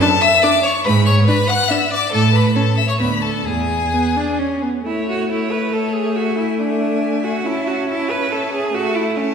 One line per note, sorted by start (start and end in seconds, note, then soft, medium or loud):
0.01 0.09 D4 medium
0.01 0.22 A4 loud
0.01 0.23 A5 loud
0.21 0.44 E5 loud
0.21 0.44 E6 loud
0.42 0.51 D4 medium
0.42 0.62 D5 loud
0.42 0.66 D6 loud
0.63 0.71 C#5 loud
0.63 0.85 C#6 loud
0.84 1.20 G#2 loud
0.84 0.92 B4 loud
0.84 1.05 B5 loud
1.06 1.26 C#5 loud
1.06 1.14 C#6 loud
1.27 1.36 D4 medium
1.27 1.49 B4 loud
1.27 1.51 B5 loud
1.47 1.70 F#5 medium
1.47 1.73 F#6 loud
1.68 1.78 D4 medium
1.68 1.92 E5 medium
1.68 1.92 E6 loud
1.91 2.12 D5 loud
1.91 2.13 D6 loud
2.12 2.48 A2 medium
2.12 2.33 A4 medium
2.12 2.37 A5 loud
2.33 2.55 B4 medium
2.33 2.57 B5 medium
2.56 2.64 C#4 medium
2.56 2.79 A4 medium
2.56 2.76 A5 medium
2.77 2.88 E5 medium
2.77 2.88 E6 loud
2.88 2.99 C#5 medium
2.88 2.93 C#6 medium
2.99 3.37 D2 medium
2.99 3.08 B3 medium
2.99 3.07 B4 medium
2.99 3.23 B5 loud
3.22 3.47 A4 medium
3.22 3.46 A5 medium
3.45 3.85 E2 medium
3.45 4.64 G#4 medium
3.45 4.63 G#5 medium
3.93 4.18 B3 medium
4.16 4.41 D4 medium
4.39 4.64 C#4 medium
4.63 4.86 B3 medium
4.86 7.42 A3 medium
4.86 5.07 E4 medium
4.86 5.28 C#5 medium
4.86 5.27 E5 medium
5.09 5.30 F#4 medium
5.30 5.53 E4 medium
5.30 5.73 C#5 soft
5.30 5.73 E5 medium
5.51 5.74 B4 medium
5.73 5.96 A4 medium
5.73 6.20 C#5 medium
5.73 6.17 E5 medium
5.94 6.18 G#4 medium
6.16 6.37 F#4 medium
6.16 6.60 E5 soft
6.16 6.60 G#5 soft
6.38 6.61 E4 medium
6.59 7.25 D4 medium
6.59 7.45 E5 medium
6.59 7.48 G#5 medium
7.24 7.48 F#4 medium
7.46 8.71 C#4 medium
7.46 7.69 E4 medium
7.46 7.87 E5 medium
7.46 7.89 A5 medium
7.67 7.88 F#4 medium
7.88 8.12 E4 medium
7.88 8.29 E5 medium
7.88 8.31 A5 medium
8.10 8.33 B4 medium
8.30 8.52 A4 medium
8.30 8.72 E5 medium
8.30 8.73 A5 medium
8.53 8.76 G#4 medium
8.74 9.35 A3 medium
8.74 8.97 F#4 medium
8.74 9.16 E5 medium
8.74 9.16 A5 medium
8.96 9.18 E4 medium
9.16 9.35 C#4 medium
9.16 9.35 E5 medium
9.16 9.35 A5 medium